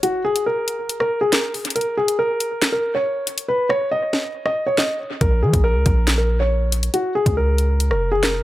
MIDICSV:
0, 0, Header, 1, 4, 480
1, 0, Start_track
1, 0, Tempo, 431655
1, 34, Time_signature, 4, 2, 24, 8
1, 9374, End_track
2, 0, Start_track
2, 0, Title_t, "Grand piano"
2, 0, Program_c, 0, 0
2, 34, Note_on_c, 0, 66, 84
2, 245, Note_off_c, 0, 66, 0
2, 273, Note_on_c, 0, 68, 92
2, 485, Note_off_c, 0, 68, 0
2, 516, Note_on_c, 0, 70, 82
2, 1079, Note_off_c, 0, 70, 0
2, 1113, Note_on_c, 0, 70, 81
2, 1325, Note_off_c, 0, 70, 0
2, 1346, Note_on_c, 0, 68, 90
2, 1455, Note_off_c, 0, 68, 0
2, 1472, Note_on_c, 0, 70, 77
2, 1684, Note_off_c, 0, 70, 0
2, 1952, Note_on_c, 0, 70, 80
2, 2164, Note_off_c, 0, 70, 0
2, 2196, Note_on_c, 0, 68, 90
2, 2406, Note_off_c, 0, 68, 0
2, 2433, Note_on_c, 0, 70, 93
2, 2998, Note_off_c, 0, 70, 0
2, 3030, Note_on_c, 0, 70, 72
2, 3243, Note_off_c, 0, 70, 0
2, 3276, Note_on_c, 0, 73, 82
2, 3839, Note_off_c, 0, 73, 0
2, 3875, Note_on_c, 0, 71, 88
2, 4086, Note_off_c, 0, 71, 0
2, 4108, Note_on_c, 0, 73, 94
2, 4322, Note_off_c, 0, 73, 0
2, 4353, Note_on_c, 0, 75, 92
2, 4918, Note_off_c, 0, 75, 0
2, 4955, Note_on_c, 0, 75, 84
2, 5166, Note_off_c, 0, 75, 0
2, 5188, Note_on_c, 0, 73, 87
2, 5296, Note_off_c, 0, 73, 0
2, 5322, Note_on_c, 0, 75, 80
2, 5529, Note_off_c, 0, 75, 0
2, 5793, Note_on_c, 0, 70, 83
2, 6004, Note_off_c, 0, 70, 0
2, 6033, Note_on_c, 0, 68, 80
2, 6245, Note_off_c, 0, 68, 0
2, 6269, Note_on_c, 0, 70, 92
2, 6836, Note_off_c, 0, 70, 0
2, 6870, Note_on_c, 0, 70, 74
2, 7083, Note_off_c, 0, 70, 0
2, 7116, Note_on_c, 0, 73, 82
2, 7679, Note_off_c, 0, 73, 0
2, 7714, Note_on_c, 0, 66, 84
2, 7925, Note_off_c, 0, 66, 0
2, 7953, Note_on_c, 0, 68, 88
2, 8165, Note_off_c, 0, 68, 0
2, 8196, Note_on_c, 0, 70, 85
2, 8759, Note_off_c, 0, 70, 0
2, 8793, Note_on_c, 0, 70, 82
2, 9004, Note_off_c, 0, 70, 0
2, 9025, Note_on_c, 0, 68, 90
2, 9135, Note_off_c, 0, 68, 0
2, 9152, Note_on_c, 0, 70, 77
2, 9364, Note_off_c, 0, 70, 0
2, 9374, End_track
3, 0, Start_track
3, 0, Title_t, "808-style bass"
3, 0, Program_c, 1, 38
3, 5794, Note_on_c, 1, 34, 104
3, 6034, Note_on_c, 1, 53, 98
3, 6051, Note_off_c, 1, 34, 0
3, 6148, Note_off_c, 1, 53, 0
3, 6154, Note_on_c, 1, 34, 108
3, 6394, Note_on_c, 1, 37, 100
3, 6411, Note_off_c, 1, 34, 0
3, 6508, Note_off_c, 1, 37, 0
3, 6514, Note_on_c, 1, 34, 105
3, 7670, Note_off_c, 1, 34, 0
3, 8074, Note_on_c, 1, 37, 106
3, 8794, Note_on_c, 1, 29, 98
3, 8811, Note_off_c, 1, 37, 0
3, 9364, Note_off_c, 1, 29, 0
3, 9374, End_track
4, 0, Start_track
4, 0, Title_t, "Drums"
4, 34, Note_on_c, 9, 42, 73
4, 145, Note_off_c, 9, 42, 0
4, 396, Note_on_c, 9, 42, 82
4, 508, Note_off_c, 9, 42, 0
4, 753, Note_on_c, 9, 42, 71
4, 864, Note_off_c, 9, 42, 0
4, 995, Note_on_c, 9, 42, 82
4, 1106, Note_off_c, 9, 42, 0
4, 1115, Note_on_c, 9, 37, 71
4, 1226, Note_off_c, 9, 37, 0
4, 1475, Note_on_c, 9, 38, 114
4, 1475, Note_on_c, 9, 42, 80
4, 1481, Note_on_c, 9, 39, 91
4, 1586, Note_off_c, 9, 38, 0
4, 1586, Note_off_c, 9, 42, 0
4, 1592, Note_off_c, 9, 39, 0
4, 1716, Note_on_c, 9, 46, 63
4, 1827, Note_off_c, 9, 46, 0
4, 1834, Note_on_c, 9, 42, 82
4, 1894, Note_off_c, 9, 42, 0
4, 1894, Note_on_c, 9, 42, 70
4, 1954, Note_off_c, 9, 42, 0
4, 1954, Note_on_c, 9, 42, 54
4, 2014, Note_off_c, 9, 42, 0
4, 2014, Note_on_c, 9, 42, 44
4, 2125, Note_off_c, 9, 42, 0
4, 2316, Note_on_c, 9, 42, 84
4, 2427, Note_off_c, 9, 42, 0
4, 2673, Note_on_c, 9, 42, 69
4, 2784, Note_off_c, 9, 42, 0
4, 2914, Note_on_c, 9, 38, 118
4, 2914, Note_on_c, 9, 42, 83
4, 2920, Note_on_c, 9, 39, 90
4, 3025, Note_off_c, 9, 38, 0
4, 3026, Note_off_c, 9, 42, 0
4, 3032, Note_off_c, 9, 39, 0
4, 3636, Note_on_c, 9, 42, 86
4, 3747, Note_off_c, 9, 42, 0
4, 3754, Note_on_c, 9, 42, 80
4, 3866, Note_off_c, 9, 42, 0
4, 4115, Note_on_c, 9, 37, 95
4, 4226, Note_off_c, 9, 37, 0
4, 4594, Note_on_c, 9, 38, 67
4, 4706, Note_off_c, 9, 38, 0
4, 4955, Note_on_c, 9, 37, 69
4, 5066, Note_off_c, 9, 37, 0
4, 5315, Note_on_c, 9, 38, 110
4, 5321, Note_on_c, 9, 39, 88
4, 5426, Note_off_c, 9, 38, 0
4, 5432, Note_off_c, 9, 39, 0
4, 5794, Note_on_c, 9, 36, 103
4, 5794, Note_on_c, 9, 42, 63
4, 5905, Note_off_c, 9, 42, 0
4, 5906, Note_off_c, 9, 36, 0
4, 6155, Note_on_c, 9, 36, 97
4, 6156, Note_on_c, 9, 42, 85
4, 6266, Note_off_c, 9, 36, 0
4, 6267, Note_off_c, 9, 42, 0
4, 6514, Note_on_c, 9, 36, 92
4, 6514, Note_on_c, 9, 42, 71
4, 6625, Note_off_c, 9, 42, 0
4, 6626, Note_off_c, 9, 36, 0
4, 6754, Note_on_c, 9, 38, 117
4, 6755, Note_on_c, 9, 42, 84
4, 6761, Note_on_c, 9, 39, 95
4, 6866, Note_off_c, 9, 38, 0
4, 6866, Note_off_c, 9, 42, 0
4, 6872, Note_off_c, 9, 39, 0
4, 7476, Note_on_c, 9, 42, 93
4, 7588, Note_off_c, 9, 42, 0
4, 7594, Note_on_c, 9, 42, 82
4, 7706, Note_off_c, 9, 42, 0
4, 7715, Note_on_c, 9, 42, 78
4, 7826, Note_off_c, 9, 42, 0
4, 8074, Note_on_c, 9, 36, 100
4, 8076, Note_on_c, 9, 42, 84
4, 8186, Note_off_c, 9, 36, 0
4, 8187, Note_off_c, 9, 42, 0
4, 8433, Note_on_c, 9, 42, 72
4, 8545, Note_off_c, 9, 42, 0
4, 8675, Note_on_c, 9, 42, 82
4, 8786, Note_off_c, 9, 42, 0
4, 8795, Note_on_c, 9, 37, 69
4, 8906, Note_off_c, 9, 37, 0
4, 9155, Note_on_c, 9, 38, 116
4, 9155, Note_on_c, 9, 42, 82
4, 9161, Note_on_c, 9, 39, 89
4, 9266, Note_off_c, 9, 38, 0
4, 9266, Note_off_c, 9, 42, 0
4, 9272, Note_off_c, 9, 39, 0
4, 9374, End_track
0, 0, End_of_file